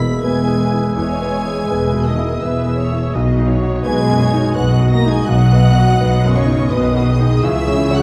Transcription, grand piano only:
0.00 0.92 E2 soft
0.00 0.13 B2 soft
0.00 0.24 B3 medium
0.00 0.71 E4 soft
0.00 0.47 G#4 soft
0.24 0.63 B3 soft
0.47 0.86 G#4 soft
0.71 1.11 E4 soft
0.96 3.10 E2 medium
1.22 1.60 B3 soft
1.46 1.85 G#4 soft
1.71 2.09 B3 medium
1.94 2.32 B2 soft
2.19 2.57 E4 medium
2.43 2.81 B3 soft
2.66 3.04 G#4 soft
2.92 3.15 E4 soft
3.15 5.25 B1 medium
3.38 3.76 D#4 soft
3.62 4.00 F#4 soft
3.85 4.24 B3 medium
4.09 4.47 F#2 soft
4.33 4.71 D#4 medium
4.55 4.94 B3 medium
4.80 5.18 F#4 medium
5.05 5.43 D#4 medium
5.28 7.40 B1 medium
5.53 5.91 B3 soft
5.78 6.15 F#4 medium
6.01 6.39 B3 medium
6.24 6.62 F#2 medium
6.46 6.85 D#4 medium
6.72 7.10 B3 medium
6.96 7.34 F#4 medium
7.19 7.44 D#4 medium
7.43 8.02 C#2 medium
7.68 8.02 C#4 medium
7.91 8.02 C#5 medium

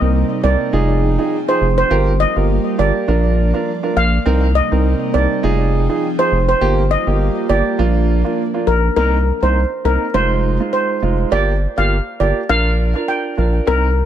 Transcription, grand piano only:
0.01 0.40 C4 medium
0.01 0.40 D#4 medium
0.01 0.41 A#4 medium
0.43 0.71 C4 medium
0.43 0.71 D#4 medium
0.43 0.71 A#4 medium
0.73 1.15 D#4 medium
0.73 1.15 F4 medium
0.73 1.15 G#4 loud
1.18 1.35 D#4 medium
1.18 1.35 F4 medium
1.18 1.36 G#4 medium
1.48 1.65 D#4 medium
1.48 1.65 F4 medium
1.48 1.65 G#4 medium
1.90 2.10 F4 loud
1.90 2.10 G4 medium
1.90 2.10 A#4 loud
2.36 2.76 F4 medium
2.36 2.76 G4 medium
2.36 2.76 A#4 medium
2.78 3.06 F4 medium
2.78 3.06 G4 medium
2.78 3.06 A#4 medium
3.08 3.50 D4 medium
3.08 3.50 F4 medium
3.08 3.50 A#4 loud
3.54 3.71 D4 medium
3.54 3.71 F4 medium
3.54 3.71 A#4 medium
3.83 4.00 D4 medium
3.83 4.00 F4 medium
3.83 4.00 A#4 medium
4.26 4.45 C4 loud
4.26 4.45 D#4 medium
4.26 4.45 A#4 loud
4.72 5.11 C4 medium
4.72 5.11 D#4 medium
4.72 5.11 A#4 medium
5.14 5.41 C4 medium
5.14 5.42 D#4 medium
5.14 5.42 A#4 medium
5.43 5.85 D#4 loud
5.43 5.86 F4 medium
5.43 5.86 G#4 loud
5.89 6.06 D#4 medium
5.89 6.06 F4 medium
5.89 6.06 G#4 medium
6.19 6.35 D#4 medium
6.19 6.35 F4 medium
6.19 6.36 G#4 medium
6.61 6.80 A#3 loud
6.61 6.81 F4 medium
6.61 6.81 G4 loud
7.07 7.46 A#3 medium
7.07 7.46 F4 medium
7.07 7.46 G4 medium
7.49 7.77 A#3 medium
7.49 7.77 F4 medium
7.49 7.77 G4 medium
7.78 8.21 A#3 medium
7.78 8.21 D4 medium
7.78 8.21 F4 loud
8.24 8.41 A#3 medium
8.24 8.41 D4 medium
8.24 8.41 F4 medium
8.54 8.71 A#3 medium
8.54 8.71 D4 medium
8.54 8.71 F4 medium
8.96 9.16 A#3 loud
8.96 9.16 C4 medium
8.96 9.16 D#4 loud
9.42 9.59 A#3 medium
9.42 9.59 C4 medium
9.42 9.59 D#4 medium
9.84 10.04 A#3 medium
9.84 10.04 C4 medium
9.84 10.04 D#4 medium
10.14 10.56 G#3 medium
10.14 10.56 D#4 medium
10.14 10.56 F4 loud
10.60 10.99 G#3 medium
10.60 10.99 D#4 medium
10.60 11.00 F4 medium
11.02 11.30 G#3 medium
11.02 11.30 D#4 medium
11.02 11.30 F4 medium
11.31 11.51 A#3 medium
11.31 11.51 F4 medium
11.31 11.51 G4 loud
11.77 11.94 A#3 medium
11.77 11.94 F4 medium
11.77 11.94 G4 medium
12.20 12.39 A#3 medium
12.20 12.39 F4 medium
12.20 12.40 G4 medium
12.49 12.91 D4 medium
12.49 12.91 F4 medium
12.49 12.92 A#4 loud
12.95 13.35 D4 medium
12.95 13.35 F4 medium
12.95 13.35 A#4 medium
13.37 13.65 D4 medium
13.37 13.65 F4 medium
13.37 13.65 A#4 medium
13.67 13.86 C4 medium
13.67 13.86 D#4 medium
13.67 13.87 A#4 loud

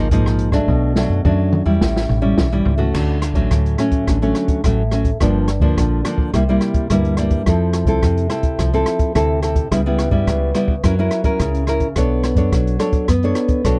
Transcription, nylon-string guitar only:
0.12 0.66 G#2 medium
0.12 0.50 F3 medium
0.12 0.50 A#3 medium
0.12 0.50 D#4 medium
0.53 0.91 F#3 medium
0.53 0.92 A3 medium
0.53 0.92 D4 medium
0.69 1.22 B2 medium
0.96 1.20 F#3 soft
0.96 1.20 A3 medium
0.96 1.21 D4 medium
1.25 1.79 F#2 medium
1.25 1.63 F#3 soft
1.25 1.63 A3 medium
1.25 1.63 D4 medium
1.66 2.19 G3 medium
1.66 2.19 C#4 medium
1.66 2.19 E4 medium
1.81 2.35 A2 medium
2.22 2.47 G3 medium
2.22 2.47 C#4 medium
2.22 2.47 E4 medium
2.38 2.92 E3 medium
2.52 2.76 G3 medium
2.52 2.76 C#4 medium
2.52 2.77 E4 medium
2.78 3.17 A3 medium
2.78 3.17 C#4 medium
2.78 3.17 F#4 medium
2.94 3.48 D3 soft
3.35 3.74 F#3 soft
3.35 3.74 A3 medium
3.35 3.74 C#4 medium
3.51 4.05 A2 soft
3.79 4.17 F#3 medium
3.79 4.17 A3 medium
3.79 4.17 C#4 medium
4.08 4.62 D3 medium
4.22 4.60 F#3 medium
4.22 4.60 A3 medium
4.22 4.60 C#4 medium
4.65 5.18 A2 medium
4.65 4.81 F#3 medium
4.65 4.82 A3 medium
4.65 4.82 C#4 medium
4.92 5.09 F#3 soft
4.92 5.09 A3 medium
4.92 5.10 C#4 medium
5.21 5.75 G2 medium
5.21 5.48 F3 medium
5.21 5.48 A#3 soft
5.21 5.48 D4 medium
5.61 6.00 F3 medium
5.61 6.00 A#3 medium
5.61 6.01 D4 medium
5.78 6.31 D3 soft
6.05 6.31 F3 medium
6.05 6.31 A#3 soft
6.05 6.32 D4 medium
6.34 6.88 C3 medium
6.34 6.42 G3 soft
6.34 6.43 A#3 medium
6.34 6.43 E4 medium
6.49 6.86 G3 medium
6.49 6.87 A#3 medium
6.49 6.87 E4 medium
6.90 7.44 G2 medium
6.90 7.14 G3 medium
6.90 7.14 A#3 medium
6.90 7.15 E4 medium
7.18 7.42 G3 medium
7.18 7.42 A#3 medium
7.18 7.42 E4 medium
7.47 8.00 F3 medium
7.47 7.85 C4 medium
7.47 7.85 E4 soft
7.47 7.85 A4 soft
7.87 8.26 C4 medium
7.87 8.26 E4 medium
7.87 8.26 A4 medium
8.03 8.56 C3 soft
8.30 8.68 C4 medium
8.30 8.68 E4 soft
8.30 8.68 A4 medium
8.59 9.13 F3 medium
8.74 9.11 C4 medium
8.74 9.11 E4 medium
8.74 9.12 A4 medium
9.15 9.69 C3 medium
9.15 9.39 C4 medium
9.15 9.39 E4 medium
9.15 9.39 A4 medium
9.42 9.67 C4 soft
9.42 9.67 E4 medium
9.42 9.67 A4 soft
9.71 10.25 C#3 medium
9.71 9.80 G3 medium
9.71 9.80 B3 medium
9.71 9.80 E4 medium
9.86 10.10 G3 medium
9.86 10.10 B3 medium
9.86 10.10 E4 medium
10.11 10.50 G3 medium
10.11 10.51 B3 medium
10.11 10.51 E4 medium
10.28 10.81 C#3 soft
10.54 10.73 G3 medium
10.54 10.74 B3 medium
10.54 10.74 E4 medium
10.84 11.38 F#3 medium
10.84 10.94 C#4 medium
10.84 10.94 E4 soft
10.84 10.94 A#4 medium
10.99 11.22 C#4 medium
10.99 11.22 E4 medium
10.99 11.23 A#4 medium
11.24 11.63 C#4 medium
11.24 11.63 E4 medium
11.24 11.63 A#4 medium
11.41 11.94 C#3 medium
11.68 11.86 C#4 soft
11.68 11.86 E4 soft
11.68 11.87 A#4 medium
11.97 12.50 B3 medium
11.97 12.34 D4 medium
11.97 12.35 A4 soft
11.97 12.35 C#5 medium
12.37 12.75 D4 medium
12.37 12.76 A4 soft
12.37 12.76 C#5 medium
12.53 13.06 F#3 soft
12.79 13.06 D4 medium
12.79 13.07 A4 medium
12.79 13.07 C#5 medium
13.09 13.62 B3 medium
13.24 13.61 D4 medium
13.24 13.61 A4 medium
13.24 13.61 C#5 medium
13.65 13.79 F#3 medium
13.65 13.79 D4 medium
13.65 13.79 A4 medium
13.65 13.79 C#5 medium

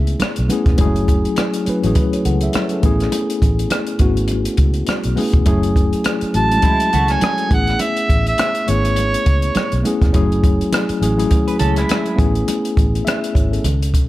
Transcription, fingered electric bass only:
0.00 0.14 C#2 medium
0.22 muted fingered electric bass stroke soft
0.39 0.48 B1 medium
0.66 0.76 E1 medium
0.79 1.25 F#1 medium
1.67 muted fingered electric bass stroke soft
1.84 1.94 A1 medium
2.25 2.48 C#2 medium
2.83 3.07 A1 medium
3.42 3.65 A1 medium
4.00 4.46 G#1 medium
4.58 4.82 C#2 medium
4.88 muted fingered electric bass stroke soft
5.05 5.15 B1 medium
5.34 5.44 E1 medium
5.47 5.93 F#1 medium
6.22 muted fingered electric bass stroke soft
6.35 6.58 A1 medium
6.94 7.17 C#2 medium
7.51 7.74 A1 medium
8.10 8.33 A1 medium
8.69 9.14 G#1 medium
9.27 9.50 C#2 medium
9.56 muted fingered electric bass stroke soft
9.73 9.83 B1 medium
10.01 10.11 E1 medium
10.15 10.61 F#1 loud
10.90 muted fingered electric bass stroke soft
11.02 11.25 A1 medium
11.61 11.83 C#2 medium
12.19 12.42 A1 medium
12.77 13.00 A1 medium
13.35 13.58 G#1 medium
13.64 13.94 C#2 loud
13.94 14.09 B1 medium

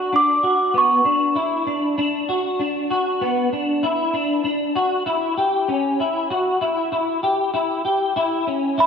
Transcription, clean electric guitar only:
0.00 0.12 F#4 medium
0.13 0.43 D4 medium
0.43 0.74 F#4 medium
0.74 1.04 B3 medium
1.05 1.36 D4 medium
1.35 1.67 E4 medium
1.67 1.97 D4 medium
1.98 2.29 D4 medium
2.29 2.60 F#4 medium
2.59 2.90 D4 medium
2.90 3.21 F#4 medium
3.21 3.52 B3 medium
3.52 3.83 D4 medium
3.83 4.14 E4 medium
4.14 4.43 D4 medium
4.44 4.75 D4 medium
4.76 5.06 F#4 medium
5.06 5.37 E4 medium
5.37 5.69 G4 medium
5.68 5.99 C#4 medium
6.00 6.30 E4 medium
6.30 6.61 F#4 medium
6.61 6.91 E4 medium
6.92 7.23 E4 medium
7.23 7.53 G4 medium
7.54 7.84 E4 medium
7.85 8.16 G4 medium
8.16 8.47 E4 medium
8.47 8.78 C#4 medium
8.78 8.87 E4 medium

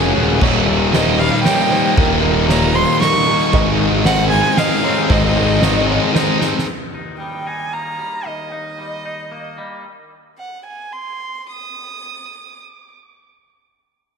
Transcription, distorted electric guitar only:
0.00 0.40 G#3 medium
0.00 0.42 C#4 medium
0.00 0.40 F#4 medium
0.00 0.41 G#4 medium
0.42 0.92 D#2 loud
0.42 0.92 A#2 loud
0.42 0.94 D#3 loud
0.42 0.94 G3 loud
0.42 0.94 A#3 loud
0.42 0.94 D#4 loud
0.93 1.45 D#2 loud
0.93 1.45 A#2 loud
0.93 1.20 D#3 loud
0.93 1.19 G3 loud
0.93 1.19 A#3 loud
0.93 1.19 D#4 loud
1.19 1.43 D#3 medium
1.19 1.44 G3 medium
1.19 1.44 A#3 medium
1.19 1.46 D#4 medium
1.44 1.95 D#3 medium
1.44 1.96 G3 medium
1.44 1.96 A#3 medium
1.44 1.97 D#4 medium
1.95 2.46 D#2 loud
1.95 2.47 A#2 loud
1.95 2.48 D#3 loud
1.95 2.48 G3 loud
1.95 2.48 A#3 loud
1.95 2.49 D#4 loud
2.48 3.00 D#2 loud
2.48 3.01 A#2 loud
2.48 2.75 D#3 loud
2.48 2.74 G3 loud
2.48 2.74 A#3 loud
2.48 2.74 D#4 loud
2.74 2.99 D#3 medium
2.74 2.99 G3 medium
2.74 3.00 A#3 medium
2.74 3.01 D#4 medium
3.00 3.51 D#3 medium
3.00 3.51 G3 medium
3.00 3.52 A#3 medium
3.00 3.55 D#4 medium
3.53 4.04 G#2 loud
3.53 4.04 D#3 loud
3.53 4.06 G#3 loud
3.53 4.06 C4 loud
3.53 4.06 D#4 loud
4.05 4.57 G#2 loud
4.05 4.56 D#3 loud
4.05 4.32 G#3 loud
4.05 4.31 C4 loud
4.05 4.31 D#4 loud
4.32 4.57 G#3 medium
4.32 4.58 C4 medium
4.32 4.59 D#4 medium
4.58 5.09 D#3 medium
4.58 5.09 G#3 medium
4.58 5.10 C4 loud
4.58 5.10 D#4 loud
5.09 5.60 G#2 loud
5.09 5.61 D#3 loud
5.09 5.61 G#3 loud
5.09 5.62 C4 loud
5.09 5.62 D#4 loud
5.61 6.14 G#2 loud
5.61 6.12 D#3 loud
5.61 5.89 G#3 loud
5.61 5.88 C4 loud
5.61 5.86 D#4 loud
5.88 6.13 G#3 medium
5.88 6.13 C4 medium
5.88 6.13 D#4 medium
6.13 6.65 D#3 medium
6.13 6.65 G#3 medium
6.13 6.66 C4 medium
6.13 6.66 D#4 loud

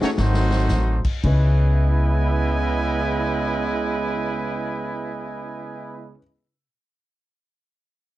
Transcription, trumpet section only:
0.02 0.10 A3 medium
0.02 0.09 D#4 medium
0.02 0.09 F#4 medium
0.02 0.09 C#5 loud
0.18 1.02 A3 loud
0.18 1.02 D#4 loud
0.18 1.01 F#4 loud
0.18 1.02 C5 loud
1.25 6.15 E4 medium
1.25 6.15 B4 medium
1.25 6.15 D#5 medium
1.25 6.15 G#5 medium

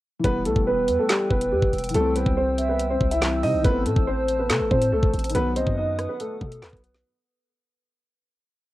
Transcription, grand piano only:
0.24 0.41 B3 medium
0.24 0.41 B4 loud
0.45 0.63 A3 medium
0.45 0.62 A4 medium
0.67 0.97 B3 medium
0.67 0.97 B4 medium
0.99 1.08 A3 medium
0.99 1.07 A4 medium
1.09 1.26 G3 medium
1.09 1.26 G4 medium
1.31 1.48 B3 medium
1.31 1.47 B4 medium
1.52 1.69 G3 medium
1.52 1.69 G4 medium
1.94 2.12 A3 medium
1.94 2.11 A4 loud
2.16 2.33 B3 medium
2.16 2.32 B4 medium
2.37 2.67 C4 medium
2.37 2.67 C5 medium
2.69 2.86 B3 medium
2.69 2.86 B4 medium
2.90 3.07 C4 medium
2.90 3.07 C5 medium
3.11 3.42 E4 medium
3.11 3.41 E5 medium
3.43 3.61 D#4 medium
3.43 3.60 D#5 loud
3.64 3.82 B3 loud
3.64 3.81 B4 loud
3.86 4.03 A3 medium
3.86 4.02 A4 medium
4.07 4.38 C4 medium
4.07 4.37 C5 medium
4.39 4.48 B3 medium
4.39 4.48 B4 medium
4.50 4.67 A3 medium
4.50 4.67 A4 medium
4.71 4.88 C4 medium
4.71 4.88 C5 medium
4.92 5.09 A3 medium
4.92 5.09 A4 medium
5.35 5.52 B3 loud
5.35 5.51 B4 loud
5.56 5.73 C4 medium
5.56 5.73 C5 medium
5.77 6.08 D#4 medium
5.77 6.07 D#5 medium
6.09 6.18 B3 medium
6.09 6.17 B4 medium
6.20 6.60 A3 medium
6.20 6.60 A4 medium
6.63 7.03 B3 medium
6.63 7.02 B4 medium

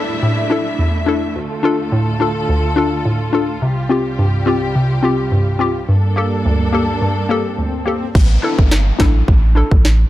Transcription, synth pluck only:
0.23 0.65 A2 medium
0.50 0.62 D4 medium
0.50 0.63 E4 medium
0.50 0.63 A4 medium
0.79 1.22 E2 medium
1.06 1.19 D4 medium
1.06 1.19 E4 medium
1.06 1.20 A4 medium
1.36 1.78 D2 medium
1.63 1.75 D4 medium
1.63 1.76 F4 medium
1.63 1.77 A4 loud
1.92 2.35 A2 medium
2.20 2.32 D4 medium
2.20 2.33 F4 medium
2.20 2.33 A4 medium
2.49 2.92 D2 medium
2.76 2.89 D4 medium
2.76 2.89 F4 medium
2.76 2.90 A4 medium
3.05 3.48 A2 medium
3.33 3.45 D4 medium
3.33 3.46 F4 medium
3.33 3.46 A4 medium
3.62 4.05 C3 medium
3.89 4.02 C4 medium
3.89 4.02 F4 medium
3.89 4.03 G4 medium
4.19 4.61 G2 medium
4.46 4.58 C4 medium
4.46 4.59 F4 medium
4.46 4.59 G4 medium
4.75 5.18 C3 medium
5.03 5.15 C4 medium
5.03 5.16 F4 medium
5.03 5.16 G4 medium
5.32 5.75 G2 medium
5.59 5.72 C4 medium
5.59 5.72 F4 medium
5.59 5.73 G4 loud
5.89 6.31 G2 medium
6.16 6.28 A#3 medium
6.16 6.29 G4 medium
6.16 6.29 A4 medium
6.45 6.88 D2 medium
6.73 6.85 A#3 medium
6.73 6.85 G4 medium
6.73 6.86 A4 loud
7.02 7.44 G2 medium
7.29 7.42 A#3 medium
7.29 7.42 G4 medium
7.29 7.42 A4 medium
7.58 8.01 D2 medium
7.86 7.98 A#3 medium
7.86 7.99 G4 medium
7.86 7.99 A4 loud
8.42 8.55 D4 medium
8.42 8.55 E4 medium
8.42 8.56 A4 loud
8.99 9.11 D4 medium
8.99 9.12 E4 medium
8.99 9.12 A4 loud
9.55 9.68 D4 medium
9.55 9.68 E4 medium
9.55 9.69 A4 medium

